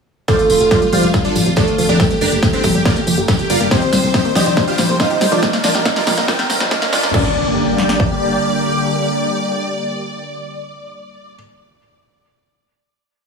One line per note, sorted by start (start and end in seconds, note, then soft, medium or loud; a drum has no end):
0.28 0.43 D3 medium
0.28 0.32 G3 medium
0.28 0.43 A3 medium
0.28 0.84 A3 medium
0.28 0.43 C4 medium
0.28 0.36 F4 medium
0.28 0.43 F4 medium
0.28 0.84 A4 medium
0.28 0.36 C5 medium
0.28 0.36 D5 medium
0.28 0.36 F5 loud
0.28 kick loud
0.28 snare soft
0.28 closed hi-hat medium
0.28 tambourine soft
0.28 riser medium
0.39 0.43 A3 medium
0.39 0.47 F4 medium
0.39 closed hi-hat medium
0.39 tambourine soft
0.50 0.59 F1 medium
0.50 0.54 F3 medium
0.50 0.58 F4 medium
0.50 open hi-hat loud
0.50 tambourine medium
0.60 0.69 F1 medium
0.60 0.75 D3 medium
0.60 0.75 A3 medium
0.60 0.75 C4 medium
0.60 0.68 F4 medium
0.60 0.75 F4 medium
0.60 0.64 G4 medium
0.60 closed hi-hat medium
0.60 tambourine soft
0.71 0.77 G3 medium
0.71 0.79 F4 medium
0.71 0.79 C5 medium
0.71 0.79 D5 medium
0.71 0.79 F5 medium
0.71 kick loud
0.71 snare medium
0.71 closed hi-hat medium
0.71 tambourine medium
0.82 0.97 D3 medium
0.82 0.86 G3 medium
0.82 0.97 A3 medium
0.82 0.97 C4 medium
0.82 0.90 F4 medium
0.82 0.97 F4 medium
0.82 closed hi-hat medium
0.82 tambourine soft
0.92 1.02 F1 medium
0.92 1.48 G3 medium
0.92 0.96 G3 medium
0.92 1.01 F4 medium
0.92 1.48 G4 medium
0.92 1.01 C5 medium
0.92 1.01 D5 medium
0.92 1.01 F5 medium
0.92 open hi-hat loud
0.92 tambourine medium
0.92 high conga medium
1.03 1.12 F1 medium
1.03 1.18 D3 medium
1.03 1.07 A3 medium
1.03 1.18 A3 medium
1.03 1.18 C4 medium
1.03 1.11 F4 medium
1.03 1.18 F4 medium
1.03 closed hi-hat medium
1.03 tambourine soft
1.14 1.18 F3 medium
1.14 kick loud
1.14 snare medium
1.14 closed hi-hat medium
1.14 tambourine medium
1.24 1.33 D4 medium
1.24 1.33 F4 medium
1.24 1.29 G4 medium
1.24 1.33 A4 medium
1.24 1.33 D5 medium
1.24 closed hi-hat medium
1.24 tambourine soft
1.35 1.44 D1 medium
1.35 1.51 D3 medium
1.35 1.41 G3 medium
1.35 1.51 A3 medium
1.35 1.51 C4 medium
1.35 1.43 F4 medium
1.35 1.50 F4 medium
1.35 open hi-hat loud
1.35 tambourine loud
1.35 high conga medium
1.46 1.55 F1 medium
1.46 1.50 G3 medium
1.46 1.54 F4 medium
1.46 closed hi-hat medium
1.46 tambourine soft
1.56 1.72 D3 medium
1.56 1.61 G3 medium
1.56 1.72 A3 medium
1.56 3.63 A3 medium
1.56 1.72 C4 medium
1.56 1.65 D4 medium
1.56 1.65 F4 medium
1.56 1.72 F4 medium
1.56 1.65 A4 medium
1.56 3.63 A4 medium
1.56 1.65 D5 loud
1.56 kick loud
1.56 snare medium
1.56 closed hi-hat medium
1.56 tambourine medium
1.67 1.71 A3 medium
1.67 1.76 F4 medium
1.67 closed hi-hat medium
1.67 tambourine soft
1.78 1.87 F1 medium
1.78 1.93 D3 medium
1.78 1.82 F3 medium
1.78 1.93 A3 medium
1.78 1.93 C4 medium
1.78 1.86 F4 medium
1.78 1.93 F4 medium
1.78 open hi-hat loud
1.78 tambourine medium
1.89 1.98 F1 medium
1.89 1.97 D4 medium
1.89 1.97 G4 medium
1.89 1.93 G4 medium
1.89 1.97 A#4 medium
1.89 1.97 D5 medium
1.89 closed hi-hat medium
1.89 tambourine soft
1.89 high conga medium
2.00 2.15 D3 medium
2.00 2.15 G3 medium
2.00 2.05 G3 medium
2.00 2.15 A#3 medium
2.00 2.08 G4 medium
2.00 2.15 G4 medium
2.00 kick loud
2.00 snare medium
2.00 closed hi-hat medium
2.00 tambourine medium
2.10 2.14 G3 medium
2.10 2.19 G4 medium
2.10 closed hi-hat medium
2.10 tambourine soft
2.21 2.30 G1 medium
2.21 2.25 G3 medium
2.21 2.29 D4 medium
2.21 2.29 G4 medium
2.21 2.29 A#4 medium
2.21 2.29 D5 medium
2.21 open hi-hat loud
2.21 tambourine medium
2.32 2.41 G1 medium
2.32 2.47 D3 medium
2.32 2.47 G3 medium
2.32 2.47 A#3 medium
2.32 2.36 A#3 medium
2.32 2.40 G4 medium
2.32 2.47 G4 medium
2.32 closed hi-hat medium
2.32 tambourine soft
2.43 2.46 F3 medium
2.43 2.51 G4 medium
2.43 kick loud
2.43 snare medium
2.43 closed hi-hat medium
2.43 tambourine soft
2.53 2.68 D3 medium
2.53 2.68 G3 medium
2.53 2.68 A#3 medium
2.53 2.61 C4 medium
2.53 2.61 D4 medium
2.53 2.61 G4 medium
2.53 2.68 G4 medium
2.53 2.57 G4 medium
2.53 2.61 C5 medium
2.53 closed hi-hat medium
2.53 tambourine soft
2.63 2.73 G1 medium
2.63 2.70 G3 medium
2.63 2.72 G4 medium
2.63 kick medium
2.63 open hi-hat loud
2.63 tambourine medium
2.63 high conga medium
2.75 2.84 G1 medium
2.75 2.90 D3 medium
2.75 2.90 G3 medium
2.75 2.79 G3 medium
2.75 2.90 A#3 medium
2.75 2.90 G4 medium
2.75 2.83 G4 medium
2.75 closed hi-hat medium
2.75 tambourine soft
2.85 2.89 G3 medium
2.85 2.94 F4 medium
2.85 2.94 A#4 medium
2.85 2.94 D5 medium
2.85 2.94 F5 medium
2.85 kick loud
2.85 snare medium
2.85 closed hi-hat medium
2.85 tambourine medium
2.96 3.00 A#3 medium
2.96 3.04 G4 medium
2.96 closed hi-hat medium
2.96 tambourine soft
3.07 3.16 F1 loud
3.07 3.22 D3 medium
3.07 3.11 F3 medium
3.07 3.22 G3 medium
3.07 3.22 A#3 medium
3.07 3.22 G4 medium
3.07 3.15 G4 medium
3.07 open hi-hat loud
3.07 tambourine loud
3.18 3.27 G1 medium
3.18 3.21 G4 medium
3.18 closed hi-hat medium
3.18 tambourine soft
3.28 3.43 D3 medium
3.28 3.43 G3 medium
3.28 3.34 G3 medium
3.28 3.43 A#3 medium
3.28 3.43 G4 medium
3.28 3.36 G4 medium
3.28 kick loud
3.28 snare medium
3.28 closed hi-hat medium
3.28 tambourine medium
3.39 3.43 G3 medium
3.39 3.47 G4 medium
3.39 closed hi-hat medium
3.39 tambourine soft
3.50 3.59 G1 loud
3.50 3.65 D3 medium
3.50 3.65 G3 medium
3.50 3.54 G3 medium
3.50 3.65 A#3 medium
3.50 3.58 F4 medium
3.50 3.65 G4 medium
3.50 3.58 A#4 medium
3.50 3.58 D5 medium
3.50 3.58 F5 medium
3.50 open hi-hat loud
3.50 tambourine loud
3.60 3.69 G1 medium
3.60 3.64 A#3 medium
3.60 3.68 G4 medium
3.60 closed hi-hat medium
3.60 tambourine soft
3.71 3.86 D#3 medium
3.71 3.75 F3 medium
3.71 3.86 G3 loud
3.71 3.86 C4 medium
3.71 4.27 C4 medium
3.71 3.86 G4 medium
3.71 3.79 G4 medium
3.71 3.79 C5 medium
3.71 4.27 C5 loud
3.71 3.79 D#5 medium
3.71 3.79 G5 loud
3.71 kick loud
3.71 snare medium
3.71 closed hi-hat medium
3.71 tambourine soft
3.81 3.86 G4 medium
3.81 3.90 C5 medium
3.81 closed hi-hat medium
3.81 tambourine soft
3.93 4.02 C2 medium
3.93 3.98 G3 medium
3.93 4.01 C5 medium
3.93 snare medium
3.93 open hi-hat loud
3.93 tambourine medium
4.03 4.12 C2 medium
4.03 4.18 D#3 medium
4.03 4.18 G3 medium
4.03 4.07 G3 medium
4.03 4.18 C4 medium
4.03 4.18 G4 medium
4.03 4.11 C5 medium
4.03 closed hi-hat medium
4.03 tambourine soft
4.14 4.18 G3 medium
4.14 4.22 G4 medium
4.14 4.22 C5 medium
4.14 4.22 D#5 medium
4.14 4.22 G5 medium
4.14 kick loud
4.14 snare medium
4.14 closed hi-hat medium
4.14 tambourine medium
4.25 4.40 D#3 medium
4.25 4.40 G3 medium
4.25 4.29 A#3 medium
4.25 4.40 C4 medium
4.25 4.40 G4 medium
4.25 4.33 C5 medium
4.25 closed hi-hat medium
4.25 tambourine soft
4.35 4.44 C2 medium
4.35 4.39 F3 medium
4.35 4.91 D4 medium
4.35 4.43 G4 medium
4.35 4.43 C5 medium
4.35 4.91 D5 medium
4.35 4.43 D#5 medium
4.35 4.43 G5 medium
4.35 snare medium
4.35 open hi-hat loud
4.35 tambourine loud
4.35 high conga medium
4.46 4.55 C2 medium
4.46 4.61 D#3 medium
4.46 4.61 G3 medium
4.46 4.61 C4 medium
4.46 4.61 G4 medium
4.46 4.50 G4 medium
4.46 4.54 C5 medium
4.46 closed hi-hat medium
4.46 tambourine soft
4.57 4.63 G3 medium
4.57 4.65 C5 medium
4.57 kick loud
4.57 snare medium
4.57 closed hi-hat medium
4.57 tambourine medium
4.67 4.71 G3 medium
4.67 4.76 F4 medium
4.67 4.76 G4 medium
4.67 4.76 C5 medium
4.67 4.76 F5 medium
4.67 closed hi-hat medium
4.67 tambourine soft
4.78 4.87 A#1 medium
4.78 4.93 D#3 medium
4.78 4.82 G3 medium
4.78 4.93 G3 medium
4.78 4.93 C4 medium
4.78 4.93 G4 medium
4.78 4.86 C5 medium
4.78 snare medium
4.78 open hi-hat loud
4.78 tambourine medium
4.78 high conga medium
4.89 4.98 C2 medium
4.89 4.93 A#3 medium
4.89 4.97 C5 medium
4.89 closed hi-hat medium
4.89 tambourine soft
5.00 5.15 D#3 medium
5.00 5.04 F3 medium
5.00 5.15 G3 medium
5.00 5.15 C4 medium
5.00 7.05 D#4 medium
5.00 5.08 F4 medium
5.00 5.08 G4 medium
5.00 5.15 G4 medium
5.00 5.08 C5 medium
5.00 7.05 D#5 medium
5.00 5.08 F5 medium
5.00 kick loud
5.00 snare medium
5.00 closed hi-hat medium
5.00 tambourine medium
5.10 5.14 G4 medium
5.10 5.18 C5 medium
5.10 closed hi-hat medium
5.10 tambourine soft
5.21 5.30 C2 medium
5.21 5.36 D#3 medium
5.21 5.36 G3 medium
5.21 5.27 G3 medium
5.21 5.36 C4 medium
5.21 5.36 G4 medium
5.21 5.29 C5 medium
5.21 snare medium
5.21 open hi-hat loud
5.21 tambourine loud
5.32 5.41 C2 medium
5.32 5.36 G3 medium
5.32 5.40 D4 medium
5.32 5.40 F4 medium
5.32 5.40 A#4 medium
5.32 5.40 D5 loud
5.32 closed hi-hat soft
5.32 tambourine soft
5.32 high conga medium
5.42 5.58 D3 medium
5.42 5.58 F3 medium
5.42 5.46 G3 medium
5.42 5.58 A#3 medium
5.42 5.58 F4 medium
5.42 kick loud
5.42 snare medium
5.42 closed hi-hat medium
5.42 tambourine medium
5.53 5.57 A#3 medium
5.53 5.61 A#4 medium
5.53 snare medium
5.53 closed hi-hat medium
5.53 tambourine soft
5.64 5.73 A#1 loud
5.64 5.68 F3 medium
5.64 5.72 D4 medium
5.64 5.72 F4 medium
5.64 5.72 A#4 medium
5.64 5.72 D5 loud
5.64 snare loud
5.64 open hi-hat loud
5.64 tambourine loud
5.74 5.84 A#1 medium
5.74 5.90 D3 medium
5.74 5.90 F3 medium
5.74 5.90 A#3 medium
5.74 5.90 F4 medium
5.74 5.79 G4 medium
5.74 5.83 A#4 medium
5.74 snare medium
5.74 closed hi-hat soft
5.74 tambourine soft
5.85 5.91 G3 medium
5.85 5.93 A#4 medium
5.85 kick loud
5.85 snare loud
5.85 closed hi-hat medium
5.85 tambourine medium
5.96 6.11 D3 medium
5.96 6.11 F3 medium
5.96 6.00 G3 medium
5.96 6.11 A#3 medium
5.96 6.04 D4 medium
5.96 6.04 F4 medium
5.96 6.11 F4 medium
5.96 6.04 A#4 medium
5.96 6.04 D5 medium
5.96 snare medium
5.96 closed hi-hat soft
5.96 tambourine soft
6.07 6.16 A#1 medium
6.07 6.11 G3 medium
6.07 6.15 A#4 medium
6.07 kick medium
6.07 snare loud
6.07 open hi-hat loud
6.07 tambourine medium
6.07 high conga medium
6.17 6.27 A#1 medium
6.17 6.33 D3 medium
6.17 6.33 F3 medium
6.17 6.21 A#3 medium
6.17 6.33 A#3 medium
6.17 6.33 F4 medium
6.17 6.26 A#4 medium
6.17 snare medium
6.17 closed hi-hat medium
6.17 tambourine soft
6.28 6.32 F3 medium
6.28 6.36 G4 medium
6.28 6.36 A#4 medium
6.28 6.36 D5 medium
6.28 6.36 G5 medium
6.28 kick loud
6.28 snare loud
6.28 closed hi-hat medium
6.28 tambourine medium
6.39 6.43 G4 medium
6.39 6.47 A#4 medium
6.39 snare medium
6.39 closed hi-hat medium
6.39 tambourine soft
6.50 6.59 F1 loud
6.50 6.65 D3 medium
6.50 6.65 F3 medium
6.50 6.52 A#3 medium
6.50 6.65 A#3 medium
6.50 6.65 F4 medium
6.50 6.58 A#4 medium
6.50 snare loud
6.50 open hi-hat loud
6.50 tambourine loud
6.60 6.69 A#1 medium
6.60 6.64 G3 medium
6.60 snare loud
6.60 closed hi-hat medium
6.60 tambourine soft
6.71 6.86 D3 medium
6.71 6.86 F3 medium
6.71 6.86 A#3 medium
6.71 6.77 D4 medium
6.71 6.86 F4 medium
6.71 6.79 A#4 medium
6.71 kick loud
6.71 snare loud
6.71 closed hi-hat medium
6.71 tambourine medium
6.82 6.88 A#3 medium
6.82 6.90 A#4 medium
6.82 snare medium
6.82 closed hi-hat medium
6.82 tambourine soft
6.92 7.02 A#2 loud
6.92 7.08 D3 medium
6.92 7.08 F3 medium
6.92 7.08 A#3 medium
6.92 7.01 D4 medium
6.92 6.96 D4 medium
6.92 7.01 F4 medium
6.92 7.08 F4 medium
6.92 7.01 A#4 medium
6.92 7.01 D5 medium
6.92 snare loud
6.92 open hi-hat loud
6.92 tambourine medium
7.03 7.12 A#2 medium
7.03 7.07 F3 medium
7.03 7.11 A#4 medium
7.03 snare loud
7.03 closed hi-hat soft
7.03 tambourine soft
7.14 8.39 G1 loud
7.14 11.33 D3 medium
7.14 11.33 G3 medium
7.14 7.34 G3 medium
7.14 11.33 A#3 medium
7.14 11.33 G4 loud
7.14 11.33 D5 loud
7.14 11.35 D5 medium
7.14 kick loud
7.14 crash medium
7.14 impact medium
7.78 snare medium
7.89 snare medium
8.00 kick medium